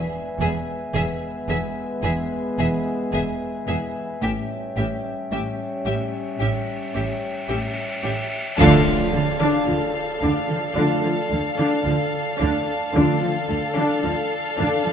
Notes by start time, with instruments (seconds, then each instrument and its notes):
Already playing: cello section E2, french horn section G#3 B3, glass harmonica B4 E5 G#5
0.40 double bass section E1, cello section E2, viola section B3, violin section G#4 E5
0.94 double bass section E1, cello section E2, viola section B3, violin section G#4 E5
1.49 double bass section E1, cello section E2, viola section B3, violin section G#4 E5
2.03 double bass section E1, cello section E2, viola section B3, violin section G#4 E5
2.58 double bass section E1, cello section E2 E3, viola section B3, violin section G#4 E5
3.12 double bass section E1, cello section E2, viola section B3, violin section G#4 E5
3.67 double bass section E1, cello section E2 E3, viola section B3, violin section G#4 E5
4.22 double bass section A1, cello section A2, french horn section G3 C#4, viola section C#4, violin section G4 E5, glass harmonica C#5 E5 G5, cymbal swell
4.76 double bass section A1, cello section A2, viola section C#4, violin section G4 E5
5.31 double bass section A1, cello section A2, viola section C#4, violin section G4 E5
5.85 double bass section A1, cello section A2, viola section C#4, violin section G4 E5
6.40 double bass section A1, cello section A2, viola section C#4, violin section G4 E5
6.95 double bass section A1, cello section A2 A3, viola section C#4, violin section G4 E5
7.48 double bass section A1, cello section A2, viola section C#4, violin section G4 E5
8.03 double bass section A1, cello section A2 A3, viola section C#4, violin section G4 E5
8.57 double bass section D2, cello section D3, trombone section F3 A3, french horn section D4 F4, viola section D4, violin section A4 F5, glass harmonica D5 F5 A5, impact
8.85 cello section D3, viola section F3
9.12 double bass section D2, cello section D3, viola section A3
9.40 cello section D3, viola section D4
9.67 double bass section D2, cello section D3 D4, viola section F3
10.21 double bass section D2, cello section D3 D4, viola section D4
10.49 cello section D3, viola section F3
10.75 double bass section D2, cello section D3, trombone section F3 A3, viola section D4, french horn section D4 F4
11.03 cello section D3, viola section F3
11.31 double bass section D2, cello section D3 D4, viola section A3
11.57 cello section D3, viola section D4
11.85 double bass section D2, cello section D3, viola section F3
12.39 double bass section D2, cello section D3 D4, viola section D4
12.94 double bass section D2, cello section D3, trombone section F3 A3, viola section D4, french horn section D4 F4, violin section A4 F5, glass harmonica D5 F5 A5
13.21 cello section D3, viola section F3
13.49 double bass section D2, cello section D3, viola section A3
13.76 cello section D3, viola section D4
14.03 double bass section D2, cello section D3 D4, viola section F3
14.57 double bass section D2, cello section D3 D4, viola section D4
14.85 cello section D3, viola section F3